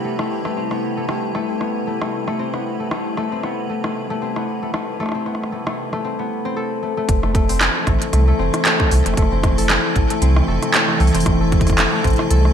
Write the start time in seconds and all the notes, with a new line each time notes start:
Already playing: C3 G3 A3 B3 E4 G4 B4 G5
0.04 A3
0.19 A3, cross-stick
0.45 A3, cross-stick
0.57 C4
0.71 B3, cross-stick
0.97 A3
1.09 A3, cross-stick
1.35 A3, cross-stick
1.49 C4
1.61 B3, cross-stick
1.87 A3
2.02 A3, cross-stick
2.28 A3, cross-stick
2.39 C4
2.54 B3, cross-stick
2.80 A3
2.91 A3, cross-stick
3.17 A3, cross-stick
3.32 C4
3.43 B3, cross-stick
3.70 A3
3.84 A3, cross-stick
4.10 A3
4.22 C4
4.36 B3, cross-stick
4.62 A3
4.74 A3, cross-stick
5.00 A3, cross-stick
5.03 cross-stick
5.06 cross-stick
5.09 cross-stick
5.12 C4, cross-stick
5.26 B3, cross-stick
5.35 cross-stick
5.44 cross-stick
5.52 A3
5.67 A3, cross-stick
5.93 A3, cross-stick
6.04 C4
6.19 B3
6.45 C4
6.56 A4
6.83 A3
6.97 A3
7.09 F1 C3 E3 F3 A3 E4, kick, closed hi-hat
7.23 A3, cross-stick
7.35 A3, kick, closed hi-hat
7.49 C4, open hi-hat
7.61 cross-stick, clap, closed hi-hat
7.75 A4
7.87 A1 A3, kick, cross-stick, closed hi-hat
8.02 closed hi-hat
8.13 C2 A3, cross-stick, closed hi-hat
8.28 A3
8.39 F1 C4
8.54 cross-stick, closed hi-hat
8.65 A4, clap, closed hi-hat
8.80 A3, kick, cross-stick
8.91 C2, open hi-hat
9.06 F1 A3, cross-stick, closed hi-hat
9.14 F1 A3, kick, cross-stick, closed hi-hat
9.22 cross-stick
9.32 C4
9.43 kick, cross-stick, closed hi-hat
9.58 A4, open hi-hat
9.70 A3, cross-stick, clap, closed hi-hat
9.96 A1 A3, kick, closed hi-hat
10.10 A3, closed hi-hat
10.22 C2 C4, closed hi-hat
10.36 cross-stick
10.48 F1 A4
10.62 A3, cross-stick, closed hi-hat
10.74 clap, closed hi-hat
10.89 A3, cross-stick
11.00 C2 A3, open hi-hat
11.07 open hi-hat
11.15 F1 C4, closed hi-hat, open hi-hat
11.20 open hi-hat
11.26 F1, kick, cross-stick, closed hi-hat
11.41 A4
11.52 A3, kick, cross-stick, closed hi-hat
11.60 kick, cross-stick, closed hi-hat
11.67 kick, cross-stick, closed hi-hat, open hi-hat
11.73 cross-stick
11.78 A3, cross-stick, clap, closed hi-hat
11.93 A3
12.04 A1 C4, kick, closed hi-hat
12.07 closed hi-hat
12.10 closed hi-hat
12.13 closed hi-hat
12.16 cross-stick, closed hi-hat
12.30 C2 A4, closed hi-hat
12.45 A3, cross-stick